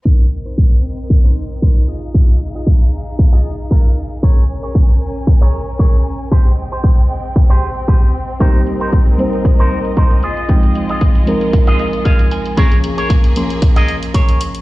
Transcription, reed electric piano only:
X:1
M:4/4
L:1/8
Q:"Swing 16ths" 1/4=115
K:Fm
V:1 name="Reed electric piano"
z8 | z8 | z8 | z8 |
[G,B,CEG]3 [G,B,CEc]4 z | [F,A,CEg]3 [F,A,CEB]4- [F,A,CEB] | [F,B,DA]3 [F,B,Dc']4- [F,B,Dc'] |]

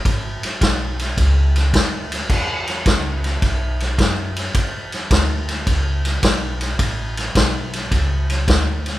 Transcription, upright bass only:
X:1
M:4/4
L:1/8
Q:"Swing" 1/4=107
K:Emix
V:1 name="Upright bass" clef=bass
G,,, z B,,,2 C,,2 D,,2 | E,,2 C,,2 B,,,2 F,,2 | E,,2 D,,2 C,,2 B,,,2 | A,,,2 B,,,2 C,,2 D,,2 |]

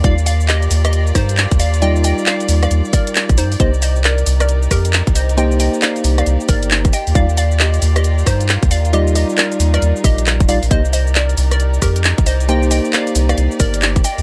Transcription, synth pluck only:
X:1
M:4/4
L:1/16
Q:"Swing 16ths" 1/4=135
K:Cm
V:1 name="Synth pluck"
[df] z [df] z [Ge]2 z [Ge]2 z [Ec]2 z2 [df] z | [eg] z [eg] z [df]2 z [df]2 z [Bd]2 z2 [Ec] z | [ce] z [ce] z [Bd]2 z [Bd]2 z [GB]2 z2 [ce] z | [eg] z [eg] z [df]2 z [df]2 z [Bd]2 z2 [eg] z |
[df] z [df] z [Ge]2 z [Ge]2 z [Ec]2 z2 [df] z | [Ge] z [Ge] z [Bd]2 z [Bd]2 z [Ge]2 z2 [df] z | [ce] z [ce] z [Bd]2 z [Bd]2 z [GB]2 z2 [ce] z | [eg] z [eg] z [df]2 z [df]2 z [Bd]2 z2 [eg] z |]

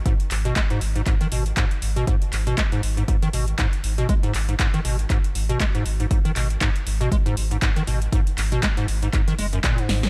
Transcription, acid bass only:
X:1
M:4/4
L:1/16
Q:"Swing 16ths" 1/4=119
K:G#m
V:1 name="Acid bass" clef=bass
G,, z2 B,, G, G,, z G,, G,, D, B,, z G,, z2 B,, | G,, z2 B,, G, G,, z G,, G,, D, B,, z G,, z2 B,, | G, G,, z G,, G,, D, B,, z G,, z2 B,, G, G,, z G,, | G,, D, B,, z G,, z2 B,, G, G,, z G,, G,, D, B,, z |
G,, z2 B,, G, G,, z G,, G,, D, G, F,, A,, G,,2 G, |]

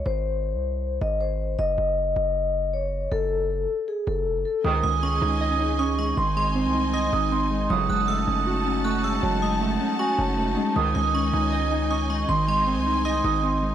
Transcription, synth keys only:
X:1
M:4/4
L:1/8
Q:1/4=157
K:F#dor
V:1 name="Synth keys"
z8 | z8 | z8 | D, G, C D d D C G, |
D, G, ^B, D d D B, G, | F, G, A, C F C A, G, | F, G, A, C F C A, G, | D, G, C D d D C G, |
D, G, ^B, D d D B, G, |]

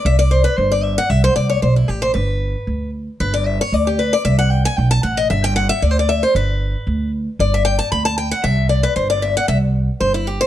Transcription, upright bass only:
X:1
M:4/4
L:1/8
Q:"Swing" 1/4=229
K:G
V:1 name="Upright bass" clef=bass
C,,4 G,,,4 | C,,2 C,,2 B,,,2 A,,,2 | G,,,4 D,,4 | G,,,4 D,,4 |
C,,4 B,,,2 A,,,2 | G,,,4 D,,4 | G,,,4 D,,4 | G,,,4 D,,4 |
C,,4 G,,,4 | C,,4 G,,,4 |]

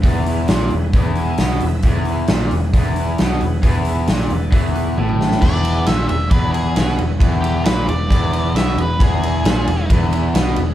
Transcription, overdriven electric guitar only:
X:1
M:4/4
L:1/8
Q:1/4=134
K:Emix
V:1 name="Overdriven electric guitar" clef=bass
E,,2 ^A,, E,, E,,2 B,, E,, | E,,2 ^A,, E,, E,,2 B,, E,, | E,,2 ^A,, E,, E,,2 =A,,2 | E,,2 ^A,, E,, E,,2 B,, E,, |
E,,2 ^A,, E,, E,,2 B,, E,, | E,,2 ^A,, E,, E,,2 B,, E,, |]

